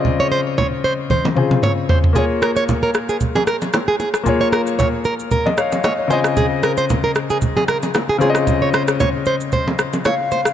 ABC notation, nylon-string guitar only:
X:1
M:4/4
L:1/16
Q:"Swing 16ths" 1/4=114
K:Db
V:1 name="Nylon-string guitar"
z d c z d z c z c2 z2 d z c z | A z B d z B z A z A B z2 A A z | z d B z d z B z B2 z2 d z c z | A z B c z B z A z A B z2 A A z |
z d c z d z c z c2 z2 d z c z |]